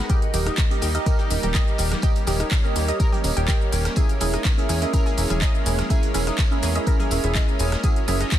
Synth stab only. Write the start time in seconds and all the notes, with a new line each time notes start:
0.10 G4 A#4 D#5
0.34 G4 A#4 D#5
0.71 G4 A#4 D#5
0.95 G4 A#4 D#5
1.06 G4 A#4 D#5
1.30 G4 A#4 D#5
1.43 G4 A#4 D#5
1.55 G4 A#4 D#5
1.79 G4 A#4 G5
2.03 G4 A#4 D#5
2.27 G4 A#4 D#5
2.64 G4 A#4 D#5
2.88 G4 A#4 D#5
3.00 G4 A#4 D#5
3.24 G4 A#4 D#5
3.36 G4 A#4 D#5
3.48 G4 A#4 D#5
3.72 G4 A#4 G5
3.97 C#4 E4 G#4 A#4 E5
4.21 C#4 E4 G#4 A#4 E5
4.58 C#4 E4 G#4 A#4 E5
4.82 C#4 E4 G#4 A#4 E5
4.93 C#4 E4 G#4 A#4 E5
5.17 C#4 E4 G#4 A#4 E5
5.30 C#4 E4 G#4 A#4 E5
5.42 C#4 E4 G#4 A#4
5.66 C#4 E4 G#4 A#4 G#5
5.90 C#4 E4 G#4 A#4 E5
6.14 C#4 E4 G#4 A#4 E5
6.51 C#4 E4 G#4 A#4 E5
6.75 C#4 E4 G#4 A#4 E5
6.87 C#4 E4 G#4 A#4 E5
7.11 C#4 E4 G#4 A#4 E5
7.24 C#4 E4 G#4 A#4 E5
7.35 C#4 E4 G#4 A#4 E5
7.59 C#4 E4 G#4 A#4 G#5
7.84 C#4 E4 F#4 A#4 E5
8.08 C#4 E4 F#4 A#4 E5